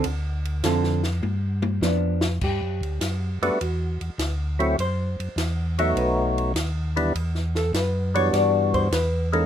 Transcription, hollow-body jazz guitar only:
X:1
M:4/4
L:1/8
Q:"Swing" 1/4=102
K:Gmix
V:1 name="Hollow-body jazz guitar"
z2 [D,CFA] z3 [F,B,D] z | [K:G] G3 B F z3 | c3 e B z3 | z A B ^c d =c B A |]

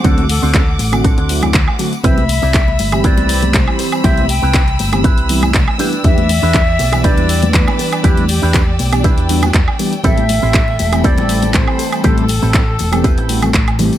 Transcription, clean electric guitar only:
X:1
M:4/4
L:1/16
Q:"Swing 16ths" 1/4=120
K:Ador
V:1 name="Clean electric guitar"
[CDFA]2 z [CDFc] z4 [CDFA]3 z4 z | [CEGB]2 z [CEGd] z4 [CEGB]3 z4 z | [CEGc]2 z [CEGB] z4 [CEGB]3 z3 [DEGB]2- | [DEGB]2 z [DEGB] z4 [DEGB]3 z4 z |
[DEGB]2 z [DEGB] z4 [DEGB]3 z4 z | [CEGA]2 z [CEGc] z4 [CEGA]3 z4 z | [CEGc]2 z [CEGA] z4 [CEGB]3 z4 z |]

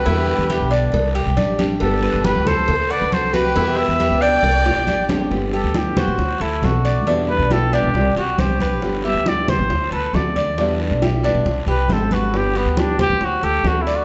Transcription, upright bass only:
X:1
M:4/4
L:1/16
Q:1/4=137
K:G
V:1 name="Upright bass" clef=bass
E,,3 E,,2 B,,,3 C,,3 C,, A,,,4 | G,,,3 G,,,2 ^C,,3 D,,3 D,, =C,,4 | E,,3 E,,2 ^C,,3 =C,,3 C,, A,,,4 | G,,,3 D,,4 A,,, D,,2 D,,2 B,,,4 |
E,,3 B,,,4 B,,, C,,2 C,,2 C,,4 | G,,,3 D,,4 A,,, D,,2 D,,2 D,,4 | E,,3 B,,,4 B,,, C,,2 C,,2 _A,,,4 | G,,,3 D,,4 D,, D,,2 D,,2 D,,4 |]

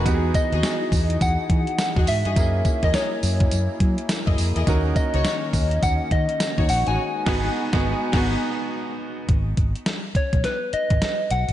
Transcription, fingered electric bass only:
X:1
M:4/4
L:1/16
Q:"Swing 16ths" 1/4=104
K:G#m
V:1 name="Fingered electric bass" clef=bass
E,,2 z D,, z2 E,,2 E,, z E, z2 E,, G,, =G,, | F,,2 z E,, z2 F,,2 F,, z F, z2 F,, ^E,, =E,, | D,,2 z C,, z2 D,,2 D,, z D, z2 D,, A,,, =A,,, | z2 G,,,2 z G,,,2 z G,,,2 z6 |
G,,,2 G,,, z4 B,,, z3 G,,, z2 B,,, =A,,, |]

